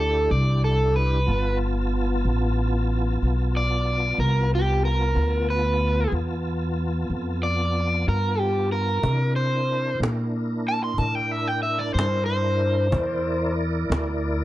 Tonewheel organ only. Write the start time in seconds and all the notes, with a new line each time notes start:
Already playing: D4 E4 G4
1.26 B3 F4 A5
5.13 B3 F4 A5
9.02 D4 E4 A#4
12.91 E4 A#4 D5